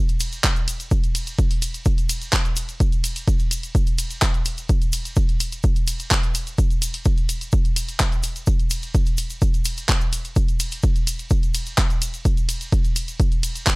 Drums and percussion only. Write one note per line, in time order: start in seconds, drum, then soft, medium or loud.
0.09 closed hi-hat soft
0.09 cabasa soft
0.20 open hi-hat loud
0.20 ride medium
0.20 cabasa medium
0.33 closed hi-hat soft
0.33 cabasa soft
0.44 kick loud
0.44 clap loud
0.44 closed hi-hat medium
0.44 cabasa soft
0.56 closed hi-hat soft
0.56 cabasa soft
0.68 open hi-hat loud
0.68 ride medium
0.68 cabasa loud
0.80 closed hi-hat soft
0.80 cabasa soft
0.91 kick loud
0.91 closed hi-hat medium
0.91 cabasa soft
1.04 closed hi-hat soft
1.04 cabasa soft
1.15 open hi-hat loud
1.15 ride medium
1.15 cabasa medium
1.27 closed hi-hat soft
1.27 cabasa soft
1.39 kick loud
1.39 closed hi-hat medium
1.39 cabasa soft
1.51 open hi-hat medium
1.51 cabasa soft
1.62 open hi-hat loud
1.62 ride medium
1.62 cabasa medium
1.74 closed hi-hat soft
1.74 cabasa soft
1.85 kick loud
1.85 closed hi-hat medium
1.85 cabasa medium
1.98 closed hi-hat soft
1.98 cabasa soft
2.09 open hi-hat loud
2.09 ride medium
2.09 cabasa loud
2.22 closed hi-hat soft
2.22 cabasa soft
2.33 kick loud
2.33 clap loud
2.33 closed hi-hat medium
2.33 cabasa medium
2.45 closed hi-hat soft
2.45 cabasa soft
2.56 open hi-hat loud
2.56 ride medium
2.56 cabasa loud
2.69 closed hi-hat soft
2.69 cabasa soft
2.80 kick loud
2.80 closed hi-hat medium
2.80 cabasa medium
2.92 closed hi-hat soft
2.92 cabasa soft
3.04 open hi-hat loud
3.04 ride medium
3.04 cabasa loud
3.16 open hi-hat medium
3.16 cabasa soft
3.28 kick loud
3.28 closed hi-hat medium
3.28 cabasa medium
3.39 closed hi-hat soft
3.39 cabasa soft
3.51 open hi-hat loud
3.51 ride medium
3.51 cabasa loud
3.63 closed hi-hat soft
3.63 cabasa soft
3.75 kick loud
3.75 closed hi-hat medium
3.75 cabasa medium
3.87 closed hi-hat soft
3.87 cabasa soft
3.98 open hi-hat loud
3.98 ride medium
3.98 cabasa loud
4.11 closed hi-hat soft
4.11 cabasa soft
4.22 kick loud
4.22 clap loud
4.22 closed hi-hat medium
4.22 cabasa medium
4.34 closed hi-hat soft
4.34 cabasa soft
4.46 open hi-hat loud
4.46 ride medium
4.46 cabasa medium
4.58 closed hi-hat soft
4.58 cabasa soft
4.69 kick loud
4.69 closed hi-hat medium
4.69 cabasa medium
4.82 closed hi-hat soft
4.82 cabasa soft
4.92 open hi-hat loud
4.92 ride medium
4.92 cabasa loud
5.05 closed hi-hat soft
5.05 cabasa soft
5.16 kick loud
5.16 closed hi-hat medium
5.16 cabasa medium
5.29 closed hi-hat soft
5.29 cabasa soft
5.40 open hi-hat loud
5.40 ride medium
5.40 cabasa medium
5.52 closed hi-hat soft
5.52 cabasa soft
5.63 kick loud
5.63 closed hi-hat medium
5.63 cabasa medium
5.76 closed hi-hat soft
5.76 cabasa soft
5.87 open hi-hat loud
5.87 ride medium
5.87 cabasa loud
6.00 closed hi-hat soft
6.00 cabasa soft
6.11 kick loud
6.11 clap loud
6.11 closed hi-hat medium
6.11 cabasa medium
6.23 closed hi-hat soft
6.23 cabasa soft
6.35 open hi-hat loud
6.35 ride medium
6.35 cabasa medium
6.47 closed hi-hat soft
6.47 cabasa soft
6.58 kick loud
6.58 closed hi-hat medium
6.58 cabasa medium
6.70 closed hi-hat soft
6.70 cabasa soft
6.82 open hi-hat loud
6.82 ride medium
6.82 cabasa loud
6.94 open hi-hat medium
6.94 cabasa soft
7.05 kick loud
7.05 closed hi-hat medium
7.05 cabasa medium
7.17 closed hi-hat soft
7.17 cabasa soft
7.29 open hi-hat loud
7.29 ride medium
7.29 cabasa medium
7.41 closed hi-hat soft
7.41 cabasa soft
7.52 kick loud
7.52 closed hi-hat medium
7.52 cabasa medium
7.65 closed hi-hat soft
7.65 cabasa soft
7.76 open hi-hat loud
7.76 ride medium
7.76 cabasa loud
7.88 closed hi-hat soft
7.88 cabasa soft
8.00 kick loud
8.00 clap loud
8.00 closed hi-hat medium
8.00 cabasa soft
8.12 closed hi-hat soft
8.12 cabasa soft
8.23 open hi-hat loud
8.23 ride medium
8.23 cabasa loud
8.36 closed hi-hat soft
8.36 cabasa soft
8.47 kick loud
8.47 closed hi-hat medium
8.47 cabasa medium
8.59 closed hi-hat soft
8.59 cabasa soft
8.70 open hi-hat loud
8.70 ride medium
8.70 cabasa loud
8.83 closed hi-hat soft
8.83 cabasa soft
8.95 kick loud
8.95 closed hi-hat medium
8.95 cabasa medium
9.06 closed hi-hat soft
9.06 cabasa soft
9.17 open hi-hat loud
9.17 ride medium
9.17 cabasa loud
9.30 closed hi-hat soft
9.30 cabasa soft
9.42 kick loud
9.42 closed hi-hat medium
9.42 cabasa medium
9.54 closed hi-hat soft
9.54 cabasa soft
9.65 open hi-hat loud
9.65 ride medium
9.65 cabasa loud
9.78 closed hi-hat soft
9.78 cabasa soft
9.89 kick loud
9.89 clap loud
9.89 closed hi-hat medium
9.89 cabasa medium
10.01 closed hi-hat soft
10.01 cabasa soft
10.13 open hi-hat loud
10.13 ride medium
10.13 cabasa medium
10.25 closed hi-hat soft
10.25 cabasa soft
10.36 kick loud
10.36 closed hi-hat medium
10.36 cabasa medium
10.48 closed hi-hat soft
10.48 cabasa soft
10.60 open hi-hat loud
10.60 ride medium
10.60 cabasa medium
10.72 open hi-hat medium
10.72 cabasa soft
10.83 kick loud
10.83 closed hi-hat medium
10.83 cabasa soft
10.96 closed hi-hat soft
10.96 cabasa soft
11.07 open hi-hat loud
11.07 ride medium
11.07 cabasa loud
11.19 closed hi-hat soft
11.19 cabasa soft
11.30 kick loud
11.30 closed hi-hat medium
11.30 cabasa medium
11.43 closed hi-hat soft
11.43 cabasa soft
11.54 open hi-hat loud
11.54 ride medium
11.54 cabasa medium
11.66 closed hi-hat soft
11.66 cabasa soft
11.78 kick loud
11.78 clap loud
11.78 closed hi-hat medium
11.78 cabasa soft
11.90 closed hi-hat soft
11.90 cabasa soft
12.02 open hi-hat loud
12.02 ride medium
12.02 cabasa medium
12.14 closed hi-hat soft
12.14 cabasa soft
12.25 kick loud
12.25 closed hi-hat medium
12.25 cabasa medium
12.37 closed hi-hat soft
12.37 cabasa soft
12.49 open hi-hat loud
12.49 ride medium
12.49 cabasa medium
12.61 closed hi-hat soft
12.61 cabasa soft
12.72 kick loud
12.72 closed hi-hat medium
12.72 cabasa medium
12.84 closed hi-hat soft
12.84 cabasa soft
12.96 open hi-hat loud
12.96 ride medium
12.96 cabasa medium
13.08 closed hi-hat soft
13.08 cabasa soft
13.20 kick loud
13.20 closed hi-hat medium
13.20 cabasa medium
13.32 closed hi-hat soft
13.32 cabasa soft
13.43 open hi-hat loud
13.43 ride medium
13.43 cabasa medium
13.55 closed hi-hat soft
13.55 cabasa soft
13.67 kick loud
13.67 clap loud
13.67 closed hi-hat medium
13.67 cabasa medium